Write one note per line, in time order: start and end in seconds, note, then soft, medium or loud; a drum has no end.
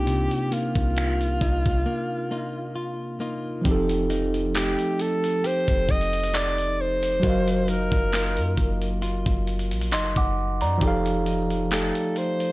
0.00 0.28 C2 loud
0.00 3.15 C3 medium
0.00 3.16 A#3 medium
0.00 3.17 D4 medium
0.00 1.41 D#4 medium
0.00 3.18 D#4 medium
0.00 3.20 F4 medium
0.00 0.56 G4 medium
0.07 3.65 C3 medium
0.07 closed hi-hat medium
0.31 closed hi-hat medium
0.52 1.85 A#3 medium
0.52 3.22 F4 medium
0.52 closed hi-hat medium
0.75 1.39 C2 medium
0.75 kick loud
0.75 closed hi-hat medium
0.97 finger snap loud
0.97 closed hi-hat medium
1.21 closed hi-hat medium
1.41 1.64 C2 loud
1.41 2.31 D#4 medium
1.41 kick medium
1.41 closed hi-hat medium
1.66 1.85 C2 loud
1.66 kick medium
1.66 closed hi-hat medium
1.86 2.30 A#3 medium
2.31 3.19 A#3 medium
2.31 3.20 D#4 medium
2.31 2.75 F4 medium
2.76 3.21 F4 medium
3.20 3.75 A#3 medium
3.20 4.09 D#4 medium
3.20 3.65 F4 medium
3.61 4.75 F1 loud
3.61 7.17 F3 medium
3.61 7.23 F3 medium
3.61 7.19 C4 medium
3.61 kick loud
3.61 closed hi-hat medium
3.66 7.20 D#4 medium
3.66 4.55 G4 medium
3.66 7.21 G4 medium
3.71 7.22 A4 medium
3.89 closed hi-hat medium
4.10 4.55 D#4 medium
4.10 closed hi-hat medium
4.34 closed hi-hat medium
4.55 7.33 A3 medium
4.55 6.33 D#4 medium
4.55 5.43 G4 medium
4.55 5.03 G4 medium
4.55 clap loud
4.55 closed hi-hat medium
4.79 closed hi-hat medium
4.99 5.48 A4 loud
4.99 closed hi-hat medium
5.24 closed hi-hat medium
5.44 7.23 G4 medium
5.44 5.92 C5 loud
5.44 closed hi-hat medium
5.68 5.88 F1 loud
5.68 kick medium
5.68 closed hi-hat medium
5.89 7.19 F1 loud
5.89 6.37 D#5 loud
5.89 kick medium
5.89 closed hi-hat soft
6.01 closed hi-hat medium
6.13 closed hi-hat medium
6.24 closed hi-hat medium
6.34 7.67 D#4 medium
6.34 6.83 D5 loud
6.34 clap loud
6.34 closed hi-hat medium
6.58 closed hi-hat medium
6.81 7.72 C5 loud
7.03 closed hi-hat medium
7.20 7.90 F#1 loud
7.20 10.76 F#3 medium
7.20 10.81 F#3 medium
7.20 8.14 F4 medium
7.20 10.77 F#4 medium
7.20 kick loud
7.20 closed hi-hat medium
7.24 10.78 A#4 medium
7.24 9.45 D#5 medium
7.29 9.46 F5 medium
7.48 closed hi-hat medium
7.68 8.13 D#4 medium
7.68 9.04 A#4 loud
7.68 closed hi-hat medium
7.92 8.39 F#1 loud
7.92 kick loud
7.92 closed hi-hat medium
8.13 10.91 A#3 medium
8.13 9.92 D#4 medium
8.13 9.02 F4 medium
8.13 clap loud
8.13 closed hi-hat medium
8.37 8.57 F#2 loud
8.37 closed hi-hat medium
8.57 9.24 F#1 loud
8.57 kick medium
8.57 closed hi-hat medium
8.82 closed hi-hat medium
9.02 10.82 F4 medium
9.02 closed hi-hat medium
9.26 9.73 F#1 loud
9.26 kick medium
9.26 closed hi-hat medium
9.47 closed hi-hat soft
9.59 closed hi-hat medium
9.71 9.94 A#1 loud
9.71 closed hi-hat medium
9.81 closed hi-hat medium
9.92 10.15 F#1 loud
9.92 11.26 D#4 medium
9.92 10.16 D#5 medium
9.92 10.16 C6 medium
9.92 clap loud
9.92 closed hi-hat medium
10.16 10.63 F#1 loud
10.16 10.60 F#5 medium
10.16 10.59 D6 medium
10.16 kick loud
10.16 closed hi-hat medium
10.61 10.81 F#2 loud
10.61 11.04 D5 medium
10.61 11.04 A#5 medium
10.61 closed hi-hat medium
10.78 11.91 F1 loud
10.78 12.52 F3 medium
10.78 12.52 D#4 medium
10.78 kick loud
10.78 closed hi-hat medium
10.82 11.71 G4 medium
10.82 12.52 G4 medium
10.82 12.52 A4 medium
10.88 12.52 F5 medium
11.06 closed hi-hat medium
11.26 11.71 D#4 medium
11.26 closed hi-hat medium
11.50 closed hi-hat medium
11.71 12.52 A3 medium
11.71 12.52 D#4 medium
11.71 12.52 G4 medium
11.71 12.19 A4 medium
11.71 clap loud
11.71 closed hi-hat medium
11.95 closed hi-hat medium
12.16 12.52 C5 medium
12.16 closed hi-hat medium
12.40 closed hi-hat medium